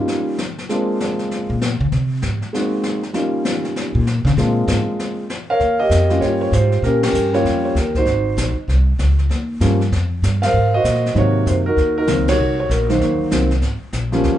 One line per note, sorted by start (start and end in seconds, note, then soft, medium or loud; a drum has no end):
0.00 0.37 G3 medium
0.00 0.37 A#3 soft
0.00 0.37 C#4 soft
0.00 0.37 D#4 soft
0.00 0.38 F4 medium
0.08 brush sweep medium
0.08 snare soft
0.38 snare medium
0.58 snare soft
0.69 1.54 G#3 medium
0.69 1.54 A#3 medium
0.69 1.55 C4 medium
0.69 1.55 D4 soft
0.69 1.55 F4 medium
0.69 brush sweep soft
0.69 snare soft
1.00 snare medium
1.19 snare soft
1.31 brush sweep soft
1.31 snare soft
1.50 1.78 A#2 medium
1.61 snare medium
1.80 1.91 C#3 loud
1.92 2.20 C3 medium
1.92 brush sweep soft
1.92 snare soft
2.22 2.41 G#2 medium
2.22 snare medium
2.42 snare soft
2.53 2.99 G#3 medium
2.53 2.99 A#3 soft
2.53 3.00 C4 soft
2.53 3.00 D#4 soft
2.53 3.00 F#4 medium
2.53 brush sweep soft
2.53 snare soft
2.83 snare medium
3.03 snare soft
3.13 3.99 G3 medium
3.13 3.99 A#3 soft
3.13 4.00 C#4 soft
3.13 4.00 D#4 soft
3.13 4.00 F4 medium
3.13 brush sweep medium
3.13 snare soft
3.45 snare medium
3.65 snare soft
3.76 brush sweep soft
3.76 snare medium
3.95 4.23 A#2 medium
4.07 snare medium
4.25 4.36 C#3 loud
4.25 snare soft
4.37 4.66 A#2 medium
4.37 5.23 G#3 soft
4.37 5.23 A#3 soft
4.37 5.23 C4 soft
4.37 5.23 D4 soft
4.37 5.23 F4 medium
4.37 brush sweep soft
4.37 snare soft
4.68 4.79 G#2 loud
4.68 snare medium
4.99 brush sweep medium
4.99 snare soft
5.30 snare medium
5.50 5.79 A#4 medium
5.50 6.07 C#5 medium
5.50 5.78 F5 loud
5.60 5.89 D#2 medium
5.60 brush sweep soft
5.60 snare soft
5.79 6.21 G4 medium
5.79 6.38 A#4 medium
5.79 6.23 D#5 loud
5.90 6.20 F2 medium
5.90 snare medium
5.90 hi-hat pedal medium
6.09 6.49 G3 medium
6.09 6.50 A#3 medium
6.09 6.50 C#4 medium
6.09 6.21 F4 medium
6.09 snare soft
6.21 6.51 G2 medium
6.21 6.52 F4 medium
6.21 6.52 G4 medium
6.21 6.40 C#5 medium
6.21 brush sweep soft
6.21 snare soft
6.41 6.52 C#5 medium
6.52 6.82 G#2 medium
6.52 7.11 F4 soft
6.52 6.84 G4 medium
6.52 6.84 C5 medium
6.52 snare soft
6.52 hi-hat pedal medium
6.72 snare soft
6.82 7.13 A#2 medium
6.82 7.04 C#4 medium
6.82 7.03 G4 medium
6.82 7.01 A#4 medium
6.82 brush sweep soft
6.82 snare soft
7.03 7.32 C#4 medium
7.03 7.35 G4 medium
7.03 7.34 A#4 medium
7.03 snare medium
7.03 ride medium
7.13 7.43 G2 medium
7.13 hi-hat pedal medium
7.33 7.73 G3 medium
7.33 7.74 A#3 medium
7.33 7.73 C#4 medium
7.33 7.74 F4 medium
7.33 7.92 G4 medium
7.33 7.64 C#5 medium
7.33 snare soft
7.44 7.74 F2 medium
7.44 brush sweep soft
7.44 snare soft
7.65 7.75 C#5 medium
7.75 8.05 D#2 medium
7.75 7.96 A#4 medium
7.75 snare soft
7.75 hi-hat pedal soft
7.95 8.54 D#4 medium
7.95 8.54 F#4 medium
7.95 8.53 C5 medium
7.95 kick soft
7.95 snare soft
8.06 8.36 G#1 medium
8.06 brush sweep soft
8.06 snare soft
8.37 8.55 A#1 medium
8.37 snare medium
8.37 hi-hat pedal medium
8.56 muted upright bass stroke soft
8.68 8.98 C2 medium
8.68 brush sweep medium
8.68 snare soft
8.99 9.29 C#2 medium
8.99 snare medium
8.99 hi-hat pedal soft
9.19 snare soft
9.29 9.59 D#2 medium
9.29 brush sweep soft
9.29 snare soft
9.61 9.90 G2 medium
9.61 9.78 F3 medium
9.61 9.78 G3 medium
9.61 9.78 A#3 medium
9.61 9.79 C#4 medium
9.61 snare medium
9.61 hi-hat pedal medium
9.81 snare soft
9.92 10.21 F2 medium
9.92 brush sweep soft
9.92 snare soft
10.22 10.52 G2 medium
10.22 snare medium
10.22 hi-hat pedal medium
10.42 11.00 A#4 medium
10.42 10.74 C5 medium
10.42 10.74 F5 loud
10.42 snare medium
10.42 ride medium
10.53 10.83 G#2 medium
10.53 brush sweep soft
10.74 11.17 F#4 medium
10.74 11.32 C5 medium
10.74 11.17 D#5 loud
10.84 11.14 A#2 medium
10.84 snare medium
10.84 hi-hat pedal medium
10.95 snare soft
11.06 snare soft
11.15 11.45 G#2 medium
11.15 11.62 C3 medium
11.15 11.61 D#3 medium
11.15 11.61 F#3 medium
11.15 11.62 A#3 medium
11.15 11.66 F#4 medium
11.15 11.65 A#4 medium
11.15 11.45 C#5 medium
11.15 brush sweep soft
11.15 snare soft
11.46 11.76 F#2 medium
11.46 11.53 C5 medium
11.46 snare soft
11.46 hi-hat pedal medium
11.66 11.97 D#4 medium
11.66 11.97 F#4 medium
11.66 11.94 A#4 medium
11.77 12.07 D#2 medium
11.77 brush sweep soft
11.77 snare soft
11.98 12.55 D#4 medium
11.98 12.27 F#4 medium
11.98 12.27 A#4 loud
12.07 12.37 C#2 medium
12.07 12.25 D#3 medium
12.07 12.25 F#3 soft
12.07 12.25 A#3 medium
12.07 12.25 C4 medium
12.07 snare medium
12.07 hi-hat pedal medium
12.28 12.86 F#4 medium
12.28 12.68 A#4 medium
12.28 12.58 C#5 loud
12.28 snare medium
12.28 ride medium
12.39 12.68 C2 medium
12.39 brush sweep medium
12.60 12.70 C#5 medium
12.69 12.99 A#1 medium
12.69 12.89 A#4 medium
12.69 snare medium
12.69 hi-hat pedal medium
12.89 13.29 D#3 medium
12.89 13.29 F#3 medium
12.89 13.29 A#3 medium
12.89 13.47 D#4 medium
12.89 13.47 F#4 medium
12.89 13.47 C5 medium
12.89 snare soft
13.00 13.18 D#2 medium
13.00 brush sweep soft
13.00 snare soft
13.19 muted upright bass stroke soft
13.31 13.61 C2 medium
13.31 13.49 D#3 medium
13.31 13.49 F#3 medium
13.31 13.49 A#3 soft
13.31 13.49 C4 medium
13.31 snare medium
13.31 hi-hat pedal medium
13.51 snare soft
13.62 13.80 G#1 medium
13.62 brush sweep soft
13.62 snare soft
13.82 muted upright bass stroke soft
13.93 14.23 A#1 medium
13.93 snare medium
13.93 hi-hat pedal medium
14.12 14.38 F3 medium
14.12 14.38 G3 medium
14.12 14.38 A#3 medium
14.12 14.38 C#4 medium
14.12 snare soft
14.24 14.38 D#2 medium
14.24 brush sweep medium
14.24 snare soft